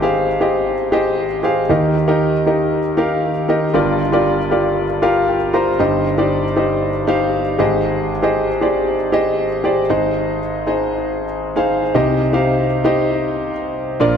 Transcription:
0.00 1.40 G#1 medium
0.00 1.40 G#2 medium
0.00 0.02 G4 medium
0.00 0.27 G4 medium
0.00 0.03 G#4 medium
0.00 0.27 G#4 medium
0.00 0.03 C5 medium
0.00 0.28 C5 medium
0.00 0.42 D#5 medium
0.00 0.28 F5 medium
0.41 0.74 G4 medium
0.41 0.74 G#4 medium
0.41 0.74 C5 medium
0.41 0.74 D#5 medium
0.92 1.25 G4 medium
0.92 1.25 G#4 medium
0.92 1.25 C5 medium
0.92 1.26 D#5 medium
1.43 1.60 G4 medium
1.43 1.60 G#4 medium
1.43 1.60 C5 medium
1.43 1.61 F5 medium
1.69 3.71 D#2 medium
1.69 3.71 D#3 medium
1.69 1.94 D#4 medium
1.69 1.94 G4 medium
1.69 1.94 A#4 medium
1.69 1.94 D#5 medium
2.08 2.32 D#4 medium
2.08 2.32 G4 medium
2.08 2.33 A#4 medium
2.08 2.33 D#5 medium
2.46 2.79 D#4 medium
2.46 2.79 G4 medium
2.46 2.79 A#4 medium
2.46 2.80 D#5 medium
2.97 3.30 D#4 medium
2.97 3.30 G4 medium
2.97 3.31 A#4 medium
2.97 3.31 F5 medium
3.48 3.65 D#4 medium
3.48 3.65 G4 medium
3.48 3.66 A#4 medium
3.48 3.66 D#5 medium
3.74 5.76 G1 medium
3.74 5.76 G2 medium
3.74 3.99 F4 medium
3.74 3.99 G4 medium
3.74 3.99 A#4 medium
3.74 3.99 D5 medium
4.12 4.37 F4 medium
4.12 4.37 G4 medium
4.12 4.38 A#4 medium
4.12 4.38 D5 medium
4.51 4.84 F4 medium
4.51 4.84 G4 medium
4.51 4.84 A#4 medium
4.51 4.84 D5 medium
5.02 5.35 F4 medium
5.02 5.35 G4 medium
5.02 5.36 A#4 medium
5.02 5.36 F5 medium
5.28 5.52 G5 medium
5.53 5.70 F4 medium
5.53 5.70 G4 medium
5.53 5.71 A#4 medium
5.53 5.71 C5 medium
5.53 5.78 A#5 medium
5.79 7.55 G1 medium
5.79 7.55 G2 medium
5.79 6.04 D#4 medium
5.79 6.04 G4 medium
5.79 6.04 C5 medium
5.79 6.05 D#5 medium
6.18 6.42 D#4 medium
6.18 6.43 G4 medium
6.18 6.43 C5 medium
6.18 6.43 D5 medium
6.56 6.89 D#4 medium
6.56 6.89 G4 medium
6.56 6.90 C5 medium
6.56 6.90 D#5 medium
7.07 7.40 D#4 medium
7.07 7.41 G4 medium
7.07 7.41 C5 medium
7.07 7.41 F5 loud
7.59 9.60 G#1 medium
7.59 9.60 G#2 medium
7.59 8.10 G4 medium
7.59 8.10 G#4 medium
7.59 8.11 C5 medium
7.59 8.11 D#5 medium
8.22 8.47 G4 medium
8.22 8.48 G#4 medium
8.22 8.48 C5 medium
8.22 8.48 D#5 medium
8.61 8.94 G4 medium
8.61 8.95 G#4 medium
8.61 8.95 C5 medium
8.61 8.95 D5 medium
9.12 9.46 G4 medium
9.12 9.46 G#4 medium
9.12 9.46 C5 medium
9.12 9.46 D#5 medium
9.64 9.81 G4 medium
9.64 9.81 G#4 medium
9.64 9.81 C5 medium
9.64 9.81 D5 medium
9.89 11.91 G#1 medium
9.89 11.91 G#2 medium
9.89 10.39 D#4 medium
9.89 10.39 G#4 medium
9.89 10.39 C5 medium
9.89 10.40 D#5 medium
10.66 11.24 D#4 medium
10.66 11.24 G#4 medium
10.66 11.24 C5 medium
10.66 11.25 D#5 medium
11.56 11.81 D#4 medium
11.56 11.81 G#4 medium
11.56 11.81 C5 medium
11.56 11.81 F5 medium
11.94 13.96 C2 medium
11.94 13.96 C3 medium
11.94 12.19 D#4 medium
11.94 12.20 G4 medium
11.94 12.20 C5 medium
11.94 12.20 D#5 medium
12.33 12.66 D#4 medium
12.33 12.66 G4 medium
12.33 12.66 C5 medium
12.33 12.67 F5 medium
12.84 13.50 D#4 medium
12.84 13.50 G4 medium
12.84 13.50 C5 medium
12.84 13.51 D#5 medium
14.00 14.17 A#1 medium
14.00 14.17 A#2 medium
14.00 14.17 D4 medium
14.00 14.17 F4 medium
14.00 14.17 A#4 medium
14.00 14.17 D5 medium

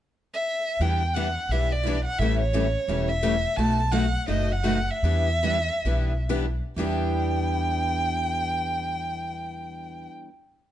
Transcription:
0.34 0.83 E5 medium
0.80 1.35 E2 medium
0.80 1.01 E3 medium
0.80 1.01 G3 medium
0.80 1.02 B3 medium
0.80 1.02 D4 medium
0.80 1.02 E4 medium
0.80 1.02 G4 medium
0.80 1.02 B4 medium
0.80 1.15 G5 medium
1.14 1.26 E3 medium
1.14 1.26 G3 medium
1.14 1.27 B3 medium
1.14 1.27 D4 medium
1.14 1.27 E4 medium
1.14 1.27 G4 medium
1.14 1.27 B4 medium
1.14 1.53 F#5 medium
1.49 2.05 B1 medium
1.49 1.71 E3 medium
1.49 1.71 G3 medium
1.49 1.72 B3 medium
1.49 1.72 D4 medium
1.49 1.72 E4 medium
1.49 1.72 G4 medium
1.49 1.72 B4 medium
1.49 1.73 E5 medium
1.72 2.04 D5 medium
1.83 1.95 E3 medium
1.83 1.95 G3 medium
1.83 1.97 B3 medium
1.83 1.95 D4 medium
1.83 1.96 E4 medium
1.83 1.96 B4 medium
1.88 1.97 G4 medium
2.05 2.20 F#5 medium
2.18 2.75 A1 medium
2.18 2.41 C#3 medium
2.18 2.40 E3 medium
2.18 2.40 G3 medium
2.18 2.41 A3 medium
2.18 2.40 C#4 medium
2.18 2.40 E4 medium
2.18 2.40 A4 medium
2.18 2.39 E5 medium
2.22 2.42 G4 medium
2.40 3.10 C#5 medium
2.53 2.65 C#3 medium
2.53 2.65 E3 medium
2.53 2.65 G3 medium
2.53 2.65 A3 medium
2.53 2.65 C#4 medium
2.53 2.66 E4 medium
2.53 2.65 G4 medium
2.53 2.66 A4 medium
2.88 3.44 E1 medium
2.88 3.10 C#3 medium
2.88 3.09 E3 medium
2.88 3.10 G3 medium
2.88 3.10 A3 medium
2.88 3.10 C#4 medium
2.88 3.10 E4 medium
2.88 3.10 G4 medium
2.88 3.10 A4 medium
3.09 3.58 E5 medium
3.23 3.34 C#3 medium
3.23 3.34 E3 medium
3.23 3.35 G3 medium
3.23 3.34 A3 medium
3.23 3.35 C#4 medium
3.23 3.35 E4 medium
3.23 3.35 G4 medium
3.23 3.35 A4 medium
3.56 4.14 B1 medium
3.56 3.79 B2 medium
3.56 3.79 F#3 medium
3.56 3.79 A3 medium
3.56 3.80 D#4 medium
3.56 3.80 F#4 medium
3.56 3.80 B4 medium
3.56 3.93 A5 medium
3.92 4.04 B2 medium
3.92 4.04 F#3 medium
3.92 4.04 A3 medium
3.92 4.04 D#4 medium
3.92 4.04 F#4 medium
3.92 4.04 B4 medium
3.92 4.28 F#5 medium
4.28 4.88 F#1 medium
4.28 4.50 B2 medium
4.28 4.51 F#3 medium
4.28 4.51 A3 medium
4.28 4.51 D#4 medium
4.28 4.51 F#4 medium
4.28 4.51 B4 medium
4.28 4.53 D#5 medium
4.52 4.91 F#5 medium
4.65 4.78 B2 medium
4.65 4.78 F#3 medium
4.65 4.78 A3 medium
4.65 4.78 D#4 medium
4.65 4.78 F#4 medium
4.65 4.78 B4 medium
4.90 6.30 E5 medium
5.03 5.68 E2 medium
5.03 5.27 E3 medium
5.03 5.27 G3 medium
5.03 5.28 B3 medium
5.03 5.28 D4 medium
5.03 5.28 E4 medium
5.03 5.28 G4 medium
5.03 5.28 B4 medium
5.43 5.56 E3 medium
5.43 5.56 G3 medium
5.43 5.57 B3 medium
5.43 5.56 D4 medium
5.43 5.57 E4 medium
5.43 5.57 G4 medium
5.43 5.57 B4 medium
5.85 6.59 B1 medium
5.85 6.12 E3 medium
5.85 6.12 G3 medium
5.85 6.12 B3 medium
5.85 6.12 D4 medium
5.85 6.12 E4 medium
5.85 6.12 G4 medium
5.85 6.12 B4 medium
6.29 6.44 E3 medium
6.29 6.44 G3 medium
6.29 6.45 B3 medium
6.29 6.45 D4 medium
6.29 6.45 E4 medium
6.29 6.45 G4 medium
6.29 6.45 B4 medium
6.76 10.06 E2 medium
6.76 10.26 E3 medium
6.76 10.28 G3 medium
6.76 10.29 B3 medium
6.76 10.28 D4 medium
6.76 10.29 E4 medium
6.76 10.30 G4 medium
6.76 10.09 G5 medium
6.81 10.31 B4 medium

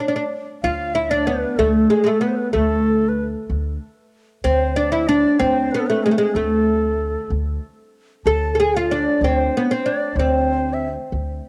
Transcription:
0.08 0.15 D4 medium
0.16 0.23 D4 medium
0.63 1.42 D2 medium
0.63 0.94 F4 medium
0.63 0.96 F5 medium
0.95 1.10 E4 medium
0.95 1.11 E5 medium
1.10 1.27 D4 medium
1.10 1.28 D5 medium
1.27 1.58 B3 medium
1.27 1.59 B4 medium
1.57 1.85 D2 medium
1.57 1.90 A3 medium
1.57 1.93 A4 medium
1.90 2.03 G#3 medium
1.90 2.08 G#4 medium
2.04 2.07 G#3 medium
2.04 2.20 A3 medium
2.04 2.24 A4 medium
2.21 2.53 B3 medium
2.21 2.29 B4 medium
2.28 2.38 C5 soft
2.36 2.52 B4 medium
2.53 3.33 D2 medium
2.53 3.21 A3 medium
2.53 3.10 A4 medium
3.09 3.25 B4 medium
3.50 3.76 D2 medium
4.44 5.23 D2 medium
4.44 4.76 C4 medium
4.44 4.78 C5 medium
4.76 4.92 D4 medium
4.76 4.93 D5 medium
4.92 5.08 E4 medium
4.92 5.09 E5 medium
5.08 5.39 D4 medium
5.08 5.41 D5 medium
5.39 5.67 D2 medium
5.39 5.73 C4 medium
5.39 5.73 C5 medium
5.71 5.89 B3 medium
5.71 5.81 B4 medium
5.80 5.88 A4 medium
5.87 6.05 A3 medium
5.87 6.05 B4 medium
6.04 6.11 G#3 medium
6.04 6.17 G#4 medium
6.11 6.18 A3 medium
6.17 6.36 G#3 medium
6.17 6.36 G#4 medium
6.34 7.14 D2 medium
6.34 7.27 A3 medium
6.34 7.30 A4 medium
7.30 7.57 D2 medium
8.26 9.05 D2 medium
8.26 8.54 A4 medium
8.26 8.54 A5 medium
8.54 8.59 A4 medium
8.54 8.60 A5 soft
8.59 8.76 G#4 medium
8.59 8.76 G#5 medium
8.75 8.92 F4 medium
8.75 8.89 F5 medium
8.90 9.24 D4 medium
8.90 9.24 D5 medium
9.21 9.48 D2 medium
9.21 9.56 C4 medium
9.21 9.69 C5 medium
9.57 9.72 B3 medium
9.70 9.87 C4 medium
9.70 9.88 C5 medium
9.86 10.19 D4 medium
9.86 10.18 D5 medium
10.16 10.95 D2 medium
10.16 10.86 C4 medium
10.16 10.75 C5 medium
10.73 10.89 E5 medium
11.12 11.39 D2 medium

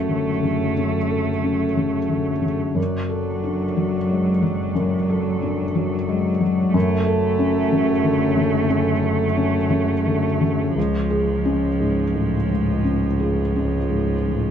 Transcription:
0.00 2.73 F#1 soft
0.00 0.71 F#2 soft
0.00 0.28 C#3 soft
0.00 2.73 A3 soft
0.00 2.74 A3 soft
0.00 0.77 C#4 soft
0.00 2.73 F#4 soft
0.00 1.11 A4 soft
0.00 2.73 C#5 soft
0.08 0.42 D3 soft
0.42 0.96 C#3 soft
0.77 1.30 C#4 soft
1.11 1.64 A4 soft
1.44 1.97 C#4 soft
1.76 2.30 C#3 soft
2.09 2.43 D3 soft
2.42 2.76 C#3 soft
2.75 6.71 F#1 soft
2.75 4.71 F#2 soft
2.75 6.70 F#3 soft
2.75 6.71 F#3 soft
2.75 6.70 F#4 soft
2.75 6.74 D5 soft
3.09 3.63 A4 soft
3.43 3.97 D4 soft
3.77 4.30 F#3 soft
4.10 4.43 G#3 soft
4.42 4.95 F#3 soft
4.75 6.70 F#2 soft
5.10 5.62 A4 soft
5.43 5.95 D4 soft
5.75 6.28 F#3 soft
6.09 6.42 G#3 soft
6.41 6.74 F#3 soft
6.74 10.77 F#1 medium
6.74 8.67 F#2 medium
6.74 10.72 A3 medium
6.74 10.72 F#4 medium
6.74 10.74 C#5 medium
7.06 7.59 A4 medium
7.39 7.92 C#4 medium
7.72 8.25 C#3 soft
8.04 8.38 D3 soft
8.37 8.90 C#3 soft
8.70 9.24 C#4 medium
9.03 9.57 A4 soft
9.37 9.92 C#4 soft
9.70 10.26 C#3 soft
10.06 10.41 D3 soft
10.41 10.76 C#3 soft
10.75 14.51 C#2 medium
10.75 12.81 C#2 soft
10.75 14.51 F3 soft
10.75 14.51 G#3 soft
10.75 14.51 F4 soft
10.75 14.51 C#5 soft
11.10 11.67 G#4 soft
11.45 12.01 C#4 soft
11.80 12.36 G#2 soft
12.14 12.50 A2 soft
12.49 13.06 G#2 soft
12.84 13.41 C#4 soft
13.20 13.77 G#4 soft
13.55 14.13 C#4 soft
13.90 14.48 G#2 soft
14.26 14.51 A2 soft

